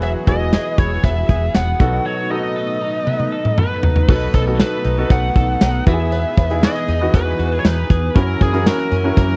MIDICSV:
0, 0, Header, 1, 7, 480
1, 0, Start_track
1, 0, Key_signature, 4, "major"
1, 0, Tempo, 508475
1, 19, Time_signature, 4, 2, 24, 8
1, 8840, End_track
2, 0, Start_track
2, 0, Title_t, "Lead electric guitar"
2, 0, Program_c, 0, 29
2, 34, Note_on_c, 0, 76, 89
2, 97, Note_off_c, 0, 76, 0
2, 269, Note_on_c, 0, 75, 90
2, 745, Note_off_c, 0, 75, 0
2, 748, Note_on_c, 0, 73, 84
2, 984, Note_off_c, 0, 73, 0
2, 988, Note_on_c, 0, 76, 100
2, 1430, Note_off_c, 0, 76, 0
2, 1468, Note_on_c, 0, 78, 104
2, 1944, Note_on_c, 0, 73, 91
2, 1957, Note_off_c, 0, 78, 0
2, 2165, Note_off_c, 0, 73, 0
2, 2185, Note_on_c, 0, 75, 87
2, 3385, Note_on_c, 0, 71, 94
2, 3584, Note_off_c, 0, 75, 0
2, 3860, Note_off_c, 0, 71, 0
2, 3871, Note_on_c, 0, 71, 103
2, 4103, Note_off_c, 0, 71, 0
2, 4106, Note_on_c, 0, 69, 88
2, 4170, Note_off_c, 0, 69, 0
2, 4351, Note_on_c, 0, 71, 100
2, 4829, Note_on_c, 0, 78, 108
2, 4839, Note_off_c, 0, 71, 0
2, 5506, Note_off_c, 0, 78, 0
2, 5549, Note_on_c, 0, 76, 99
2, 6267, Note_off_c, 0, 76, 0
2, 6270, Note_on_c, 0, 75, 102
2, 6711, Note_off_c, 0, 75, 0
2, 6749, Note_on_c, 0, 71, 96
2, 7165, Note_on_c, 0, 73, 63
2, 7170, Note_off_c, 0, 71, 0
2, 7225, Note_off_c, 0, 73, 0
2, 7228, Note_on_c, 0, 71, 95
2, 7705, Note_off_c, 0, 71, 0
2, 7708, Note_on_c, 0, 70, 100
2, 7947, Note_off_c, 0, 70, 0
2, 7951, Note_on_c, 0, 68, 85
2, 8187, Note_off_c, 0, 68, 0
2, 8191, Note_on_c, 0, 70, 91
2, 8657, Note_off_c, 0, 70, 0
2, 8668, Note_on_c, 0, 70, 95
2, 8840, Note_off_c, 0, 70, 0
2, 8840, End_track
3, 0, Start_track
3, 0, Title_t, "Grand piano"
3, 0, Program_c, 1, 0
3, 0, Control_c, 1, 64, 127
3, 0, Note_on_c, 1, 52, 71
3, 0, Note_on_c, 1, 59, 86
3, 0, Note_on_c, 1, 64, 78
3, 0, Note_on_c, 1, 66, 80
3, 0, Note_on_c, 1, 68, 97
3, 162, Note_off_c, 1, 59, 0
3, 164, Note_off_c, 1, 64, 0
3, 165, Note_off_c, 1, 66, 0
3, 168, Note_off_c, 1, 68, 0
3, 254, Note_on_c, 1, 59, 69
3, 258, Note_on_c, 1, 64, 63
3, 260, Note_on_c, 1, 66, 60
3, 264, Note_on_c, 1, 68, 76
3, 462, Note_off_c, 1, 52, 0
3, 1028, Note_off_c, 1, 59, 0
3, 1030, Note_off_c, 1, 64, 0
3, 1031, Note_off_c, 1, 66, 0
3, 1033, Note_off_c, 1, 68, 0
3, 1694, Note_on_c, 1, 59, 76
3, 1698, Note_on_c, 1, 63, 67
3, 1699, Note_on_c, 1, 47, 62
3, 1702, Note_on_c, 1, 66, 68
3, 1706, Note_on_c, 1, 69, 84
3, 1713, Control_c, 1, 64, 0
3, 1877, Control_c, 1, 64, 127
3, 2082, Note_off_c, 1, 59, 0
3, 2084, Note_off_c, 1, 63, 0
3, 2086, Note_off_c, 1, 66, 0
3, 2088, Note_off_c, 1, 69, 0
3, 2173, Note_on_c, 1, 59, 70
3, 2178, Note_on_c, 1, 63, 66
3, 2181, Note_on_c, 1, 66, 65
3, 2184, Note_on_c, 1, 69, 80
3, 2381, Note_off_c, 1, 47, 0
3, 2948, Note_off_c, 1, 59, 0
3, 2950, Note_off_c, 1, 63, 0
3, 2952, Note_off_c, 1, 66, 0
3, 2953, Note_off_c, 1, 69, 0
3, 3856, Note_on_c, 1, 59, 72
3, 3859, Note_on_c, 1, 63, 67
3, 3861, Note_on_c, 1, 47, 64
3, 3862, Note_on_c, 1, 66, 66
3, 3867, Note_on_c, 1, 69, 78
3, 3872, Control_c, 1, 64, 0
3, 4058, Control_c, 1, 64, 127
3, 4147, Note_off_c, 1, 59, 0
3, 4148, Note_off_c, 1, 63, 0
3, 4150, Note_off_c, 1, 66, 0
3, 4152, Note_off_c, 1, 69, 0
3, 4216, Note_on_c, 1, 59, 73
3, 4220, Note_on_c, 1, 63, 66
3, 4223, Note_on_c, 1, 66, 68
3, 4228, Note_on_c, 1, 69, 80
3, 4542, Note_off_c, 1, 47, 0
3, 4603, Note_off_c, 1, 59, 0
3, 4605, Note_off_c, 1, 63, 0
3, 4607, Note_off_c, 1, 66, 0
3, 4609, Note_off_c, 1, 69, 0
3, 4695, Note_on_c, 1, 59, 76
3, 4699, Note_on_c, 1, 63, 68
3, 4703, Note_on_c, 1, 66, 64
3, 4707, Note_on_c, 1, 69, 82
3, 5469, Note_off_c, 1, 59, 0
3, 5470, Note_off_c, 1, 63, 0
3, 5473, Note_off_c, 1, 66, 0
3, 5474, Note_off_c, 1, 69, 0
3, 5535, Note_on_c, 1, 59, 76
3, 5540, Note_on_c, 1, 52, 63
3, 5541, Note_on_c, 1, 64, 66
3, 5546, Note_on_c, 1, 66, 68
3, 5550, Control_c, 1, 64, 0
3, 5600, Note_off_c, 1, 66, 0
3, 5603, Note_on_c, 1, 68, 80
3, 5705, Control_c, 1, 64, 127
3, 6019, Note_off_c, 1, 59, 0
3, 6022, Note_off_c, 1, 64, 0
3, 6053, Note_off_c, 1, 68, 0
3, 6134, Note_on_c, 1, 59, 70
3, 6139, Note_on_c, 1, 63, 68
3, 6142, Note_on_c, 1, 64, 67
3, 6146, Note_on_c, 1, 68, 84
3, 6222, Note_off_c, 1, 52, 0
3, 6522, Note_off_c, 1, 59, 0
3, 6525, Note_off_c, 1, 63, 0
3, 6526, Note_off_c, 1, 64, 0
3, 6528, Note_off_c, 1, 68, 0
3, 6615, Note_on_c, 1, 59, 77
3, 6618, Note_on_c, 1, 63, 70
3, 6621, Note_on_c, 1, 52, 70
3, 6625, Note_on_c, 1, 66, 86
3, 7388, Note_off_c, 1, 59, 0
3, 7390, Note_off_c, 1, 63, 0
3, 7391, Note_off_c, 1, 52, 0
3, 7394, Note_off_c, 1, 66, 0
3, 7692, Note_on_c, 1, 61, 75
3, 7696, Note_on_c, 1, 64, 65
3, 7700, Note_on_c, 1, 66, 69
3, 7703, Note_on_c, 1, 70, 84
3, 7712, Control_c, 1, 64, 0
3, 7888, Control_c, 1, 64, 127
3, 7985, Note_off_c, 1, 61, 0
3, 7987, Note_off_c, 1, 64, 0
3, 7989, Note_off_c, 1, 66, 0
3, 7990, Note_off_c, 1, 70, 0
3, 8052, Note_on_c, 1, 61, 75
3, 8055, Note_on_c, 1, 64, 67
3, 8059, Note_on_c, 1, 66, 69
3, 8063, Note_on_c, 1, 70, 78
3, 8441, Note_off_c, 1, 61, 0
3, 8443, Note_off_c, 1, 64, 0
3, 8445, Note_off_c, 1, 66, 0
3, 8447, Note_off_c, 1, 70, 0
3, 8536, Note_on_c, 1, 61, 79
3, 8539, Note_on_c, 1, 64, 71
3, 8543, Note_on_c, 1, 66, 70
3, 8547, Note_on_c, 1, 70, 84
3, 8840, Note_off_c, 1, 61, 0
3, 8840, Note_off_c, 1, 64, 0
3, 8840, Note_off_c, 1, 66, 0
3, 8840, Note_off_c, 1, 70, 0
3, 8840, End_track
4, 0, Start_track
4, 0, Title_t, "Clean electric guitar"
4, 0, Program_c, 2, 27
4, 18, Note_on_c, 2, 54, 82
4, 261, Note_on_c, 2, 64, 58
4, 499, Note_on_c, 2, 68, 68
4, 728, Note_off_c, 2, 64, 0
4, 739, Note_on_c, 2, 64, 61
4, 978, Note_on_c, 2, 59, 70
4, 1207, Note_off_c, 2, 68, 0
4, 1218, Note_on_c, 2, 68, 64
4, 1454, Note_off_c, 2, 59, 0
4, 1457, Note_on_c, 2, 59, 59
4, 1693, Note_off_c, 2, 54, 0
4, 1697, Note_on_c, 2, 54, 83
4, 1747, Note_off_c, 2, 64, 0
4, 1747, Note_off_c, 2, 68, 0
4, 1933, Note_off_c, 2, 54, 0
4, 1937, Note_on_c, 2, 54, 83
4, 2177, Note_on_c, 2, 63, 60
4, 2417, Note_on_c, 2, 69, 71
4, 2445, Note_off_c, 2, 59, 0
4, 2653, Note_off_c, 2, 63, 0
4, 2657, Note_on_c, 2, 63, 62
4, 2898, Note_on_c, 2, 59, 67
4, 3134, Note_off_c, 2, 69, 0
4, 3137, Note_on_c, 2, 69, 64
4, 3374, Note_off_c, 2, 59, 0
4, 3378, Note_on_c, 2, 59, 62
4, 3616, Note_off_c, 2, 63, 0
4, 3619, Note_on_c, 2, 63, 62
4, 3848, Note_off_c, 2, 54, 0
4, 3859, Note_on_c, 2, 54, 76
4, 3906, Note_off_c, 2, 69, 0
4, 4095, Note_off_c, 2, 59, 0
4, 4099, Note_on_c, 2, 59, 57
4, 4341, Note_on_c, 2, 69, 67
4, 4369, Note_off_c, 2, 63, 0
4, 4580, Note_on_c, 2, 63, 62
4, 4816, Note_off_c, 2, 59, 0
4, 4820, Note_on_c, 2, 59, 67
4, 5049, Note_off_c, 2, 69, 0
4, 5061, Note_on_c, 2, 69, 66
4, 5296, Note_off_c, 2, 63, 0
4, 5300, Note_on_c, 2, 63, 64
4, 5536, Note_off_c, 2, 59, 0
4, 5540, Note_on_c, 2, 59, 85
4, 5587, Note_off_c, 2, 54, 0
4, 5588, Note_off_c, 2, 69, 0
4, 5768, Note_off_c, 2, 59, 0
4, 5779, Note_on_c, 2, 59, 79
4, 6008, Note_off_c, 2, 59, 0
4, 6019, Note_on_c, 2, 59, 62
4, 6259, Note_on_c, 2, 66, 68
4, 6379, Note_off_c, 2, 66, 0
4, 6379, Note_on_c, 2, 68, 59
4, 6495, Note_off_c, 2, 63, 0
4, 6498, Note_on_c, 2, 63, 60
4, 6727, Note_off_c, 2, 59, 0
4, 6738, Note_on_c, 2, 59, 68
4, 6975, Note_off_c, 2, 68, 0
4, 6979, Note_on_c, 2, 66, 66
4, 7100, Note_off_c, 2, 66, 0
4, 7100, Note_on_c, 2, 68, 55
4, 7210, Note_off_c, 2, 63, 0
4, 7221, Note_on_c, 2, 63, 59
4, 7450, Note_off_c, 2, 68, 0
4, 7461, Note_on_c, 2, 68, 71
4, 7703, Note_on_c, 2, 52, 85
4, 7747, Note_off_c, 2, 59, 0
4, 7748, Note_off_c, 2, 63, 0
4, 7748, Note_off_c, 2, 68, 0
4, 7940, Note_on_c, 2, 58, 61
4, 8180, Note_on_c, 2, 66, 68
4, 8419, Note_on_c, 2, 61, 60
4, 8648, Note_off_c, 2, 58, 0
4, 8659, Note_on_c, 2, 58, 66
4, 8840, Note_off_c, 2, 52, 0
4, 8840, Note_off_c, 2, 58, 0
4, 8840, Note_off_c, 2, 61, 0
4, 8840, Note_off_c, 2, 66, 0
4, 8840, End_track
5, 0, Start_track
5, 0, Title_t, "String machine"
5, 0, Program_c, 3, 50
5, 0, Note_on_c, 3, 52, 81
5, 0, Note_on_c, 3, 59, 75
5, 0, Note_on_c, 3, 66, 77
5, 0, Note_on_c, 3, 68, 94
5, 1680, Note_off_c, 3, 52, 0
5, 1680, Note_off_c, 3, 66, 0
5, 1680, Note_off_c, 3, 68, 0
5, 1696, Note_on_c, 3, 57, 84
5, 1696, Note_on_c, 3, 63, 89
5, 3821, Note_off_c, 3, 59, 0
5, 3836, Note_off_c, 3, 57, 0
5, 3836, Note_off_c, 3, 63, 0
5, 3860, Note_on_c, 3, 57, 81
5, 3860, Note_on_c, 3, 59, 77
5, 3861, Note_on_c, 3, 63, 88
5, 5523, Note_off_c, 3, 57, 0
5, 5523, Note_off_c, 3, 63, 0
5, 5535, Note_on_c, 3, 52, 84
5, 5535, Note_on_c, 3, 68, 95
5, 7662, Note_off_c, 3, 59, 0
5, 7675, Note_off_c, 3, 52, 0
5, 7675, Note_off_c, 3, 68, 0
5, 7698, Note_on_c, 3, 64, 77
5, 7698, Note_on_c, 3, 70, 88
5, 7699, Note_on_c, 3, 54, 80
5, 7699, Note_on_c, 3, 61, 72
5, 8840, Note_off_c, 3, 54, 0
5, 8840, Note_off_c, 3, 61, 0
5, 8840, Note_off_c, 3, 64, 0
5, 8840, Note_off_c, 3, 70, 0
5, 8840, End_track
6, 0, Start_track
6, 0, Title_t, "Fretless electric bass"
6, 0, Program_c, 4, 35
6, 0, Note_on_c, 4, 28, 91
6, 124, Note_off_c, 4, 28, 0
6, 257, Note_on_c, 4, 28, 95
6, 517, Note_off_c, 4, 28, 0
6, 738, Note_on_c, 4, 28, 91
6, 911, Note_off_c, 4, 28, 0
6, 977, Note_on_c, 4, 28, 99
6, 1151, Note_off_c, 4, 28, 0
6, 1218, Note_on_c, 4, 28, 98
6, 1391, Note_off_c, 4, 28, 0
6, 1459, Note_on_c, 4, 28, 97
6, 1632, Note_off_c, 4, 28, 0
6, 1698, Note_on_c, 4, 35, 96
6, 1871, Note_off_c, 4, 35, 0
6, 3857, Note_on_c, 4, 35, 103
6, 4031, Note_off_c, 4, 35, 0
6, 4096, Note_on_c, 4, 35, 91
6, 4357, Note_off_c, 4, 35, 0
6, 4578, Note_on_c, 4, 35, 88
6, 4751, Note_off_c, 4, 35, 0
6, 4816, Note_on_c, 4, 35, 97
6, 4990, Note_off_c, 4, 35, 0
6, 5057, Note_on_c, 4, 35, 96
6, 5231, Note_off_c, 4, 35, 0
6, 5299, Note_on_c, 4, 35, 102
6, 5472, Note_off_c, 4, 35, 0
6, 5539, Note_on_c, 4, 40, 102
6, 5884, Note_off_c, 4, 40, 0
6, 6017, Note_on_c, 4, 40, 104
6, 6277, Note_off_c, 4, 40, 0
6, 6498, Note_on_c, 4, 40, 91
6, 6671, Note_off_c, 4, 40, 0
6, 6738, Note_on_c, 4, 40, 103
6, 6911, Note_off_c, 4, 40, 0
6, 6977, Note_on_c, 4, 40, 98
6, 7150, Note_off_c, 4, 40, 0
6, 7216, Note_on_c, 4, 40, 107
6, 7390, Note_off_c, 4, 40, 0
6, 7459, Note_on_c, 4, 40, 91
6, 7632, Note_off_c, 4, 40, 0
6, 7699, Note_on_c, 4, 42, 112
6, 7872, Note_off_c, 4, 42, 0
6, 7938, Note_on_c, 4, 42, 99
6, 8197, Note_off_c, 4, 42, 0
6, 8417, Note_on_c, 4, 42, 92
6, 8590, Note_off_c, 4, 42, 0
6, 8658, Note_on_c, 4, 42, 101
6, 8831, Note_off_c, 4, 42, 0
6, 8840, End_track
7, 0, Start_track
7, 0, Title_t, "Drums"
7, 18, Note_on_c, 9, 42, 80
7, 19, Note_on_c, 9, 56, 61
7, 113, Note_off_c, 9, 42, 0
7, 113, Note_off_c, 9, 56, 0
7, 258, Note_on_c, 9, 36, 84
7, 259, Note_on_c, 9, 42, 68
7, 260, Note_on_c, 9, 56, 70
7, 352, Note_off_c, 9, 36, 0
7, 354, Note_off_c, 9, 42, 0
7, 354, Note_off_c, 9, 56, 0
7, 498, Note_on_c, 9, 38, 108
7, 500, Note_on_c, 9, 42, 90
7, 500, Note_on_c, 9, 56, 70
7, 592, Note_off_c, 9, 38, 0
7, 594, Note_off_c, 9, 42, 0
7, 594, Note_off_c, 9, 56, 0
7, 737, Note_on_c, 9, 42, 66
7, 738, Note_on_c, 9, 36, 90
7, 832, Note_off_c, 9, 42, 0
7, 833, Note_off_c, 9, 36, 0
7, 978, Note_on_c, 9, 36, 81
7, 980, Note_on_c, 9, 42, 87
7, 980, Note_on_c, 9, 56, 65
7, 1073, Note_off_c, 9, 36, 0
7, 1074, Note_off_c, 9, 42, 0
7, 1074, Note_off_c, 9, 56, 0
7, 1218, Note_on_c, 9, 36, 84
7, 1219, Note_on_c, 9, 42, 50
7, 1313, Note_off_c, 9, 36, 0
7, 1313, Note_off_c, 9, 42, 0
7, 1458, Note_on_c, 9, 42, 108
7, 1458, Note_on_c, 9, 56, 72
7, 1459, Note_on_c, 9, 38, 102
7, 1553, Note_off_c, 9, 38, 0
7, 1553, Note_off_c, 9, 42, 0
7, 1553, Note_off_c, 9, 56, 0
7, 1698, Note_on_c, 9, 42, 63
7, 1699, Note_on_c, 9, 36, 107
7, 1792, Note_off_c, 9, 42, 0
7, 1793, Note_off_c, 9, 36, 0
7, 2898, Note_on_c, 9, 48, 58
7, 2993, Note_off_c, 9, 48, 0
7, 3018, Note_on_c, 9, 48, 54
7, 3112, Note_off_c, 9, 48, 0
7, 3257, Note_on_c, 9, 47, 63
7, 3351, Note_off_c, 9, 47, 0
7, 3377, Note_on_c, 9, 45, 86
7, 3471, Note_off_c, 9, 45, 0
7, 3616, Note_on_c, 9, 43, 97
7, 3710, Note_off_c, 9, 43, 0
7, 3736, Note_on_c, 9, 43, 89
7, 3830, Note_off_c, 9, 43, 0
7, 3856, Note_on_c, 9, 49, 99
7, 3857, Note_on_c, 9, 36, 118
7, 3858, Note_on_c, 9, 56, 65
7, 3950, Note_off_c, 9, 49, 0
7, 3952, Note_off_c, 9, 36, 0
7, 3953, Note_off_c, 9, 56, 0
7, 4097, Note_on_c, 9, 36, 83
7, 4098, Note_on_c, 9, 42, 74
7, 4100, Note_on_c, 9, 56, 75
7, 4191, Note_off_c, 9, 36, 0
7, 4192, Note_off_c, 9, 42, 0
7, 4194, Note_off_c, 9, 56, 0
7, 4338, Note_on_c, 9, 38, 112
7, 4339, Note_on_c, 9, 54, 74
7, 4339, Note_on_c, 9, 56, 75
7, 4340, Note_on_c, 9, 42, 98
7, 4432, Note_off_c, 9, 38, 0
7, 4433, Note_off_c, 9, 56, 0
7, 4434, Note_off_c, 9, 42, 0
7, 4434, Note_off_c, 9, 54, 0
7, 4575, Note_on_c, 9, 42, 73
7, 4669, Note_off_c, 9, 42, 0
7, 4817, Note_on_c, 9, 36, 90
7, 4817, Note_on_c, 9, 42, 88
7, 4819, Note_on_c, 9, 56, 70
7, 4911, Note_off_c, 9, 36, 0
7, 4912, Note_off_c, 9, 42, 0
7, 4914, Note_off_c, 9, 56, 0
7, 5057, Note_on_c, 9, 36, 88
7, 5057, Note_on_c, 9, 42, 54
7, 5151, Note_off_c, 9, 36, 0
7, 5151, Note_off_c, 9, 42, 0
7, 5295, Note_on_c, 9, 42, 108
7, 5296, Note_on_c, 9, 38, 108
7, 5297, Note_on_c, 9, 54, 59
7, 5298, Note_on_c, 9, 56, 71
7, 5390, Note_off_c, 9, 42, 0
7, 5391, Note_off_c, 9, 38, 0
7, 5391, Note_off_c, 9, 54, 0
7, 5393, Note_off_c, 9, 56, 0
7, 5537, Note_on_c, 9, 42, 71
7, 5539, Note_on_c, 9, 36, 102
7, 5631, Note_off_c, 9, 42, 0
7, 5633, Note_off_c, 9, 36, 0
7, 5778, Note_on_c, 9, 56, 62
7, 5779, Note_on_c, 9, 42, 83
7, 5872, Note_off_c, 9, 56, 0
7, 5873, Note_off_c, 9, 42, 0
7, 6018, Note_on_c, 9, 36, 88
7, 6019, Note_on_c, 9, 42, 71
7, 6021, Note_on_c, 9, 56, 76
7, 6112, Note_off_c, 9, 36, 0
7, 6114, Note_off_c, 9, 42, 0
7, 6116, Note_off_c, 9, 56, 0
7, 6138, Note_on_c, 9, 42, 54
7, 6232, Note_off_c, 9, 42, 0
7, 6259, Note_on_c, 9, 38, 108
7, 6260, Note_on_c, 9, 54, 72
7, 6261, Note_on_c, 9, 42, 96
7, 6261, Note_on_c, 9, 56, 69
7, 6353, Note_off_c, 9, 38, 0
7, 6354, Note_off_c, 9, 54, 0
7, 6355, Note_off_c, 9, 42, 0
7, 6355, Note_off_c, 9, 56, 0
7, 6378, Note_on_c, 9, 42, 57
7, 6473, Note_off_c, 9, 42, 0
7, 6498, Note_on_c, 9, 42, 72
7, 6593, Note_off_c, 9, 42, 0
7, 6738, Note_on_c, 9, 36, 89
7, 6740, Note_on_c, 9, 42, 91
7, 6740, Note_on_c, 9, 56, 69
7, 6832, Note_off_c, 9, 36, 0
7, 6834, Note_off_c, 9, 56, 0
7, 6835, Note_off_c, 9, 42, 0
7, 6980, Note_on_c, 9, 42, 53
7, 7075, Note_off_c, 9, 42, 0
7, 7218, Note_on_c, 9, 42, 107
7, 7218, Note_on_c, 9, 56, 73
7, 7219, Note_on_c, 9, 38, 105
7, 7220, Note_on_c, 9, 54, 62
7, 7313, Note_off_c, 9, 38, 0
7, 7313, Note_off_c, 9, 42, 0
7, 7313, Note_off_c, 9, 56, 0
7, 7314, Note_off_c, 9, 54, 0
7, 7458, Note_on_c, 9, 36, 96
7, 7459, Note_on_c, 9, 42, 71
7, 7553, Note_off_c, 9, 36, 0
7, 7553, Note_off_c, 9, 42, 0
7, 7699, Note_on_c, 9, 56, 62
7, 7700, Note_on_c, 9, 36, 122
7, 7702, Note_on_c, 9, 42, 86
7, 7793, Note_off_c, 9, 56, 0
7, 7794, Note_off_c, 9, 36, 0
7, 7796, Note_off_c, 9, 42, 0
7, 7938, Note_on_c, 9, 36, 91
7, 7938, Note_on_c, 9, 56, 72
7, 7942, Note_on_c, 9, 42, 70
7, 8032, Note_off_c, 9, 56, 0
7, 8033, Note_off_c, 9, 36, 0
7, 8036, Note_off_c, 9, 42, 0
7, 8059, Note_on_c, 9, 42, 57
7, 8153, Note_off_c, 9, 42, 0
7, 8178, Note_on_c, 9, 38, 119
7, 8179, Note_on_c, 9, 56, 72
7, 8180, Note_on_c, 9, 42, 98
7, 8180, Note_on_c, 9, 54, 74
7, 8273, Note_off_c, 9, 38, 0
7, 8273, Note_off_c, 9, 56, 0
7, 8274, Note_off_c, 9, 54, 0
7, 8275, Note_off_c, 9, 42, 0
7, 8298, Note_on_c, 9, 42, 62
7, 8393, Note_off_c, 9, 42, 0
7, 8416, Note_on_c, 9, 42, 72
7, 8510, Note_off_c, 9, 42, 0
7, 8657, Note_on_c, 9, 36, 90
7, 8658, Note_on_c, 9, 42, 86
7, 8658, Note_on_c, 9, 56, 69
7, 8752, Note_off_c, 9, 36, 0
7, 8752, Note_off_c, 9, 56, 0
7, 8753, Note_off_c, 9, 42, 0
7, 8840, End_track
0, 0, End_of_file